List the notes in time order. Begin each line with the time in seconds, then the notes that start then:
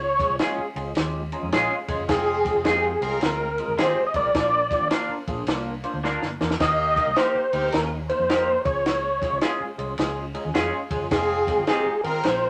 Already playing: C#2 C#5 C#6
0.20 G#3 C#4 F4 G#4, kick, snare, ride
0.30 C2
0.39 G#3 C#4 F4 G#4, snare, ride
0.58 muted fingered electric bass stroke
0.76 C#2 G#3 C#4 F4 G#4, ride
0.95 D#2 G#3 C#4 F4 G4, snare, ride
1.32 G#3 C#4 F4 G#4 A#5, ride
1.43 F2 G#5
1.52 A#1 G#3 C#4 F4 G#4 F5, snare, ride
1.88 G1 G#3 C#4 F4 G#4 D#5, kick, ride
1.99 F#1
2.08 F1 G#3 C4 F4 G#4 G#5, kick, snare, ride
2.45 G#3 C4 F4 G#4, kick, snare, ride
2.55 F1
2.65 F2 G#3 C4 D#4 F4 G4 G#4 A#4 G#5, snare, ride
3.01 C2 G#3 C4 F4 G#4 A#4, ride
3.21 D2 G#3 C4 F4 A#4 A#5, snare, ride
3.58 G#3 C4 F4 G#4, ride
3.68 G1
3.78 G#1 G#3 C4 F4 G4 G#4 C5 C6, snare, ride
4.06 D#5 D#6
4.14 C2 G#3 C4 F4 A#4 D5 D6, kick, ride
4.24 B1
4.35 A#1 A#3 D4 F4 A#4, kick, snare, ride
4.71 A#3 D4 F4 G4, kick, snare, ride
4.81 G#1
4.90 A#3 D4 F4 A#4, snare, ride
5.09 muted fingered electric bass stroke
5.28 A#1 A#3 D4 F4 G#4, kick, ride
5.47 C2 A#3 D4 F4 A#4, snare, ride
5.84 A#3 D4 F4 C5, ride
5.94 D2
6.04 A#3 D4 F4 A#4, snare
6.22 G1, snare
6.40 E2 A#3 D4 F4 A#4, snare
6.51 snare
6.59 D#2 A#3 D#4 G4 A#4 D#5 D#6, kick, snare, ride
6.96 A#3 D#4 G4 A#4, kick, snare, ride
7.07 C2
7.16 A#3 D#4 G4 A#4 C5 C6, snare, ride
7.35 muted fingered electric bass stroke
7.53 D2 A#3 D#4 G4 A#4, ride
7.72 D#2 A#3 D#4 G4 A#4 A#5, snare, ride
8.08 A#3 D#4 G4 A#4 C5 C6, ride
8.19 F2
8.29 A#3 D#4 G4 A#4, snare, ride
8.64 C#2 G#3 C#4 F4 G#4 C#5 C#6, kick, ride
8.86 snare, ride
9.22 G#3 C#4 F4 G#4, kick, snare, ride
9.32 C#2
9.41 G#3 C#4 F4 G#4, snare, ride
9.60 muted fingered electric bass stroke
9.78 C2 G#3 C#4 F4 G#4, ride
9.98 C#2 G#3 C#4 F4 G#4, snare, ride
10.34 G#3 C#4 F4 G#4 A#5, ride
10.45 D#2 G#5
10.54 F2 G#3 C#4 F4 G#4 F5, snare, ride
10.91 G1 G#3 C#4 F4 G#4, kick, ride
11.01 F#1
11.11 F1 G#3 C4 F4 G#4 G#5, kick, snare, ride
11.47 G#3 C4 F4 A#4, kick, snare, ride
11.58 G1
11.66 G#3 C4 D#4 F4 G4 G#4 A#4 G#5, snare, ride
11.86 muted fingered electric bass stroke
12.03 G#1 G#3 C4 F4 G#4 A#4 A#5, ride
12.23 A#1 G#3 C4 F4 A#4 C5 C6, snare, ride